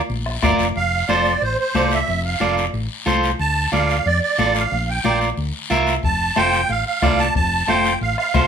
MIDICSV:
0, 0, Header, 1, 6, 480
1, 0, Start_track
1, 0, Key_signature, -1, "major"
1, 0, Tempo, 329852
1, 1104, Time_signature, 4, 2, 24, 8
1, 12330, End_track
2, 0, Start_track
2, 0, Title_t, "Accordion"
2, 0, Program_c, 0, 21
2, 1112, Note_on_c, 0, 77, 96
2, 1584, Note_on_c, 0, 74, 73
2, 1603, Note_off_c, 0, 77, 0
2, 2071, Note_on_c, 0, 72, 84
2, 2079, Note_off_c, 0, 74, 0
2, 2290, Note_off_c, 0, 72, 0
2, 2312, Note_on_c, 0, 72, 80
2, 2793, Note_on_c, 0, 76, 83
2, 2803, Note_off_c, 0, 72, 0
2, 3236, Note_off_c, 0, 76, 0
2, 3278, Note_on_c, 0, 77, 75
2, 3718, Note_off_c, 0, 77, 0
2, 4940, Note_on_c, 0, 81, 94
2, 5388, Note_off_c, 0, 81, 0
2, 5429, Note_on_c, 0, 77, 84
2, 5909, Note_on_c, 0, 74, 86
2, 5921, Note_off_c, 0, 77, 0
2, 6121, Note_off_c, 0, 74, 0
2, 6143, Note_on_c, 0, 74, 77
2, 6634, Note_on_c, 0, 77, 82
2, 6638, Note_off_c, 0, 74, 0
2, 7123, Note_off_c, 0, 77, 0
2, 7123, Note_on_c, 0, 79, 71
2, 7560, Note_off_c, 0, 79, 0
2, 8794, Note_on_c, 0, 81, 93
2, 9267, Note_on_c, 0, 79, 94
2, 9283, Note_off_c, 0, 81, 0
2, 9751, Note_on_c, 0, 77, 93
2, 9759, Note_off_c, 0, 79, 0
2, 9967, Note_off_c, 0, 77, 0
2, 9989, Note_on_c, 0, 77, 91
2, 10461, Note_on_c, 0, 81, 90
2, 10480, Note_off_c, 0, 77, 0
2, 10685, Note_off_c, 0, 81, 0
2, 10706, Note_on_c, 0, 81, 94
2, 11179, Note_on_c, 0, 79, 82
2, 11199, Note_off_c, 0, 81, 0
2, 11628, Note_off_c, 0, 79, 0
2, 11671, Note_on_c, 0, 77, 90
2, 11884, Note_off_c, 0, 77, 0
2, 11906, Note_on_c, 0, 77, 89
2, 12330, Note_off_c, 0, 77, 0
2, 12330, End_track
3, 0, Start_track
3, 0, Title_t, "Clean electric guitar"
3, 0, Program_c, 1, 27
3, 622, Note_on_c, 1, 65, 74
3, 634, Note_on_c, 1, 70, 65
3, 637, Note_on_c, 1, 74, 84
3, 961, Note_off_c, 1, 65, 0
3, 963, Note_off_c, 1, 70, 0
3, 967, Note_off_c, 1, 74, 0
3, 1583, Note_on_c, 1, 65, 58
3, 1593, Note_on_c, 1, 72, 72
3, 1597, Note_on_c, 1, 69, 52
3, 1921, Note_off_c, 1, 65, 0
3, 1923, Note_off_c, 1, 69, 0
3, 1925, Note_off_c, 1, 72, 0
3, 2547, Note_on_c, 1, 65, 57
3, 2552, Note_on_c, 1, 69, 62
3, 2560, Note_on_c, 1, 74, 64
3, 2882, Note_off_c, 1, 65, 0
3, 2885, Note_off_c, 1, 69, 0
3, 2887, Note_off_c, 1, 74, 0
3, 3496, Note_on_c, 1, 65, 61
3, 3508, Note_on_c, 1, 69, 56
3, 3510, Note_on_c, 1, 74, 75
3, 3838, Note_off_c, 1, 65, 0
3, 3840, Note_off_c, 1, 69, 0
3, 3843, Note_off_c, 1, 74, 0
3, 4452, Note_on_c, 1, 65, 78
3, 4458, Note_on_c, 1, 69, 69
3, 4473, Note_on_c, 1, 72, 74
3, 4794, Note_off_c, 1, 65, 0
3, 4799, Note_off_c, 1, 69, 0
3, 4801, Note_off_c, 1, 72, 0
3, 5414, Note_on_c, 1, 65, 59
3, 5426, Note_on_c, 1, 74, 70
3, 5428, Note_on_c, 1, 69, 54
3, 5756, Note_off_c, 1, 65, 0
3, 5759, Note_off_c, 1, 69, 0
3, 5761, Note_off_c, 1, 74, 0
3, 6380, Note_on_c, 1, 65, 61
3, 6389, Note_on_c, 1, 69, 51
3, 6393, Note_on_c, 1, 74, 67
3, 6719, Note_off_c, 1, 65, 0
3, 6720, Note_off_c, 1, 69, 0
3, 6724, Note_off_c, 1, 74, 0
3, 7340, Note_on_c, 1, 65, 62
3, 7354, Note_on_c, 1, 70, 45
3, 7354, Note_on_c, 1, 74, 69
3, 7679, Note_off_c, 1, 65, 0
3, 7682, Note_off_c, 1, 70, 0
3, 7685, Note_off_c, 1, 74, 0
3, 8295, Note_on_c, 1, 65, 85
3, 8306, Note_on_c, 1, 70, 59
3, 8307, Note_on_c, 1, 76, 78
3, 8636, Note_off_c, 1, 65, 0
3, 8638, Note_off_c, 1, 70, 0
3, 8641, Note_off_c, 1, 76, 0
3, 9264, Note_on_c, 1, 65, 65
3, 9271, Note_on_c, 1, 69, 56
3, 9275, Note_on_c, 1, 72, 65
3, 9600, Note_off_c, 1, 65, 0
3, 9601, Note_off_c, 1, 69, 0
3, 9605, Note_off_c, 1, 72, 0
3, 10220, Note_on_c, 1, 65, 67
3, 10233, Note_on_c, 1, 74, 76
3, 10234, Note_on_c, 1, 69, 57
3, 10559, Note_off_c, 1, 65, 0
3, 10561, Note_off_c, 1, 69, 0
3, 10564, Note_off_c, 1, 74, 0
3, 11182, Note_on_c, 1, 65, 64
3, 11187, Note_on_c, 1, 69, 65
3, 11198, Note_on_c, 1, 72, 59
3, 11519, Note_off_c, 1, 65, 0
3, 11522, Note_off_c, 1, 69, 0
3, 11524, Note_off_c, 1, 72, 0
3, 12142, Note_on_c, 1, 65, 63
3, 12154, Note_on_c, 1, 69, 48
3, 12157, Note_on_c, 1, 72, 67
3, 12330, Note_off_c, 1, 65, 0
3, 12330, Note_off_c, 1, 69, 0
3, 12330, Note_off_c, 1, 72, 0
3, 12330, End_track
4, 0, Start_track
4, 0, Title_t, "Fingered electric bass"
4, 0, Program_c, 2, 33
4, 140, Note_on_c, 2, 34, 86
4, 526, Note_off_c, 2, 34, 0
4, 617, Note_on_c, 2, 31, 76
4, 837, Note_off_c, 2, 31, 0
4, 856, Note_on_c, 2, 29, 78
4, 1076, Note_off_c, 2, 29, 0
4, 1096, Note_on_c, 2, 29, 86
4, 1483, Note_off_c, 2, 29, 0
4, 1580, Note_on_c, 2, 29, 73
4, 1966, Note_off_c, 2, 29, 0
4, 2066, Note_on_c, 2, 33, 78
4, 2257, Note_off_c, 2, 33, 0
4, 2543, Note_on_c, 2, 36, 81
4, 2928, Note_off_c, 2, 36, 0
4, 3026, Note_on_c, 2, 29, 93
4, 3409, Note_off_c, 2, 29, 0
4, 3500, Note_on_c, 2, 29, 83
4, 3886, Note_off_c, 2, 29, 0
4, 3979, Note_on_c, 2, 33, 79
4, 4173, Note_off_c, 2, 33, 0
4, 4460, Note_on_c, 2, 36, 87
4, 4846, Note_off_c, 2, 36, 0
4, 4940, Note_on_c, 2, 38, 94
4, 5326, Note_off_c, 2, 38, 0
4, 5418, Note_on_c, 2, 38, 78
4, 5805, Note_off_c, 2, 38, 0
4, 5904, Note_on_c, 2, 41, 82
4, 6096, Note_off_c, 2, 41, 0
4, 6384, Note_on_c, 2, 33, 87
4, 6768, Note_off_c, 2, 33, 0
4, 6865, Note_on_c, 2, 34, 100
4, 7248, Note_off_c, 2, 34, 0
4, 7344, Note_on_c, 2, 34, 75
4, 7728, Note_off_c, 2, 34, 0
4, 7822, Note_on_c, 2, 38, 75
4, 8014, Note_off_c, 2, 38, 0
4, 8305, Note_on_c, 2, 36, 77
4, 8688, Note_off_c, 2, 36, 0
4, 8781, Note_on_c, 2, 29, 91
4, 9166, Note_off_c, 2, 29, 0
4, 9261, Note_on_c, 2, 29, 78
4, 9646, Note_off_c, 2, 29, 0
4, 9738, Note_on_c, 2, 33, 78
4, 9932, Note_off_c, 2, 33, 0
4, 10221, Note_on_c, 2, 36, 81
4, 10606, Note_off_c, 2, 36, 0
4, 10704, Note_on_c, 2, 29, 92
4, 11088, Note_off_c, 2, 29, 0
4, 11184, Note_on_c, 2, 29, 77
4, 11568, Note_off_c, 2, 29, 0
4, 11660, Note_on_c, 2, 33, 80
4, 11853, Note_off_c, 2, 33, 0
4, 12142, Note_on_c, 2, 36, 83
4, 12330, Note_off_c, 2, 36, 0
4, 12330, End_track
5, 0, Start_track
5, 0, Title_t, "Two-headed folk drums"
5, 379, Note_on_c, 9, 37, 65
5, 525, Note_off_c, 9, 37, 0
5, 618, Note_on_c, 9, 37, 73
5, 622, Note_on_c, 9, 36, 75
5, 764, Note_off_c, 9, 37, 0
5, 767, Note_off_c, 9, 36, 0
5, 8782, Note_on_c, 9, 36, 72
5, 8927, Note_off_c, 9, 36, 0
5, 9257, Note_on_c, 9, 37, 67
5, 9402, Note_off_c, 9, 37, 0
5, 10222, Note_on_c, 9, 36, 73
5, 10222, Note_on_c, 9, 37, 69
5, 10367, Note_off_c, 9, 36, 0
5, 10368, Note_off_c, 9, 37, 0
5, 10702, Note_on_c, 9, 36, 77
5, 10848, Note_off_c, 9, 36, 0
5, 11179, Note_on_c, 9, 37, 70
5, 11324, Note_off_c, 9, 37, 0
5, 11904, Note_on_c, 9, 37, 64
5, 12049, Note_off_c, 9, 37, 0
5, 12140, Note_on_c, 9, 36, 76
5, 12140, Note_on_c, 9, 37, 73
5, 12285, Note_off_c, 9, 37, 0
5, 12286, Note_off_c, 9, 36, 0
5, 12330, End_track
6, 0, Start_track
6, 0, Title_t, "Drums"
6, 143, Note_on_c, 9, 74, 68
6, 149, Note_on_c, 9, 63, 34
6, 289, Note_off_c, 9, 74, 0
6, 295, Note_off_c, 9, 63, 0
6, 619, Note_on_c, 9, 73, 67
6, 630, Note_on_c, 9, 63, 76
6, 765, Note_off_c, 9, 73, 0
6, 775, Note_off_c, 9, 63, 0
6, 861, Note_on_c, 9, 73, 75
6, 1007, Note_off_c, 9, 73, 0
6, 1101, Note_on_c, 9, 74, 57
6, 1109, Note_on_c, 9, 63, 30
6, 1247, Note_off_c, 9, 74, 0
6, 1255, Note_off_c, 9, 63, 0
6, 1585, Note_on_c, 9, 63, 61
6, 1585, Note_on_c, 9, 73, 54
6, 1730, Note_off_c, 9, 63, 0
6, 1731, Note_off_c, 9, 73, 0
6, 1825, Note_on_c, 9, 73, 59
6, 1971, Note_off_c, 9, 73, 0
6, 2066, Note_on_c, 9, 74, 63
6, 2068, Note_on_c, 9, 63, 29
6, 2211, Note_off_c, 9, 74, 0
6, 2214, Note_off_c, 9, 63, 0
6, 2542, Note_on_c, 9, 63, 75
6, 2544, Note_on_c, 9, 73, 65
6, 2688, Note_off_c, 9, 63, 0
6, 2689, Note_off_c, 9, 73, 0
6, 2776, Note_on_c, 9, 73, 67
6, 2921, Note_off_c, 9, 73, 0
6, 3022, Note_on_c, 9, 63, 33
6, 3022, Note_on_c, 9, 74, 61
6, 3167, Note_off_c, 9, 63, 0
6, 3168, Note_off_c, 9, 74, 0
6, 3502, Note_on_c, 9, 63, 66
6, 3503, Note_on_c, 9, 73, 57
6, 3648, Note_off_c, 9, 63, 0
6, 3648, Note_off_c, 9, 73, 0
6, 3745, Note_on_c, 9, 73, 61
6, 3891, Note_off_c, 9, 73, 0
6, 3986, Note_on_c, 9, 63, 31
6, 3989, Note_on_c, 9, 74, 59
6, 4131, Note_off_c, 9, 63, 0
6, 4134, Note_off_c, 9, 74, 0
6, 4463, Note_on_c, 9, 63, 68
6, 4466, Note_on_c, 9, 73, 66
6, 4608, Note_off_c, 9, 63, 0
6, 4611, Note_off_c, 9, 73, 0
6, 4704, Note_on_c, 9, 73, 71
6, 4849, Note_off_c, 9, 73, 0
6, 4941, Note_on_c, 9, 74, 60
6, 4949, Note_on_c, 9, 63, 31
6, 5086, Note_off_c, 9, 74, 0
6, 5094, Note_off_c, 9, 63, 0
6, 5423, Note_on_c, 9, 73, 57
6, 5426, Note_on_c, 9, 63, 63
6, 5569, Note_off_c, 9, 73, 0
6, 5572, Note_off_c, 9, 63, 0
6, 5666, Note_on_c, 9, 73, 59
6, 5812, Note_off_c, 9, 73, 0
6, 5903, Note_on_c, 9, 74, 66
6, 5908, Note_on_c, 9, 63, 29
6, 6049, Note_off_c, 9, 74, 0
6, 6054, Note_off_c, 9, 63, 0
6, 6381, Note_on_c, 9, 73, 57
6, 6389, Note_on_c, 9, 63, 77
6, 6527, Note_off_c, 9, 73, 0
6, 6534, Note_off_c, 9, 63, 0
6, 6619, Note_on_c, 9, 73, 70
6, 6764, Note_off_c, 9, 73, 0
6, 6861, Note_on_c, 9, 74, 67
6, 6863, Note_on_c, 9, 63, 30
6, 7006, Note_off_c, 9, 74, 0
6, 7009, Note_off_c, 9, 63, 0
6, 7339, Note_on_c, 9, 63, 70
6, 7342, Note_on_c, 9, 73, 61
6, 7485, Note_off_c, 9, 63, 0
6, 7487, Note_off_c, 9, 73, 0
6, 7582, Note_on_c, 9, 73, 62
6, 7728, Note_off_c, 9, 73, 0
6, 7820, Note_on_c, 9, 74, 68
6, 7823, Note_on_c, 9, 63, 31
6, 7966, Note_off_c, 9, 74, 0
6, 7969, Note_off_c, 9, 63, 0
6, 8299, Note_on_c, 9, 73, 64
6, 8306, Note_on_c, 9, 63, 70
6, 8445, Note_off_c, 9, 73, 0
6, 8452, Note_off_c, 9, 63, 0
6, 8537, Note_on_c, 9, 73, 64
6, 8683, Note_off_c, 9, 73, 0
6, 8774, Note_on_c, 9, 74, 62
6, 8785, Note_on_c, 9, 63, 33
6, 8920, Note_off_c, 9, 74, 0
6, 8930, Note_off_c, 9, 63, 0
6, 9261, Note_on_c, 9, 63, 65
6, 9261, Note_on_c, 9, 73, 59
6, 9406, Note_off_c, 9, 73, 0
6, 9407, Note_off_c, 9, 63, 0
6, 9500, Note_on_c, 9, 73, 60
6, 9645, Note_off_c, 9, 73, 0
6, 9736, Note_on_c, 9, 74, 67
6, 9742, Note_on_c, 9, 63, 31
6, 9882, Note_off_c, 9, 74, 0
6, 9887, Note_off_c, 9, 63, 0
6, 10221, Note_on_c, 9, 73, 62
6, 10224, Note_on_c, 9, 63, 75
6, 10366, Note_off_c, 9, 73, 0
6, 10370, Note_off_c, 9, 63, 0
6, 10460, Note_on_c, 9, 73, 72
6, 10605, Note_off_c, 9, 73, 0
6, 10699, Note_on_c, 9, 74, 66
6, 10703, Note_on_c, 9, 63, 31
6, 10845, Note_off_c, 9, 74, 0
6, 10848, Note_off_c, 9, 63, 0
6, 11182, Note_on_c, 9, 73, 57
6, 11187, Note_on_c, 9, 63, 69
6, 11328, Note_off_c, 9, 73, 0
6, 11333, Note_off_c, 9, 63, 0
6, 11417, Note_on_c, 9, 73, 67
6, 11563, Note_off_c, 9, 73, 0
6, 11661, Note_on_c, 9, 74, 61
6, 11666, Note_on_c, 9, 63, 31
6, 11806, Note_off_c, 9, 74, 0
6, 11811, Note_off_c, 9, 63, 0
6, 12137, Note_on_c, 9, 73, 63
6, 12147, Note_on_c, 9, 63, 73
6, 12282, Note_off_c, 9, 73, 0
6, 12293, Note_off_c, 9, 63, 0
6, 12330, End_track
0, 0, End_of_file